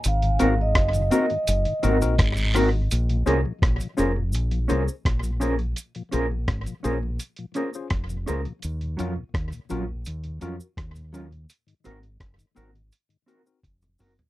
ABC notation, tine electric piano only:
X:1
M:4/4
L:1/16
Q:1/4=84
K:Bbm
V:1 name="Tine electric piano"
z2 [CEGB] z3 [CEGB] z3 [CEGB] [CEGB] z2 [CEGB] z | z2 [DFAc] z3 [DFAc] z3 [DFAc] z3 [DFAc] z | z2 [DFAc] z3 [DFAc] z3 [DFAc] [DFAc] z2 [DFAc] z | z2 [DFGB] z3 [DFGB] z3 [DFGB] z3 [DFGB] z |
z2 [CEGB] z3 [CEGB] z3 [CEGB] [CEGB] z2 [CEGB] z |]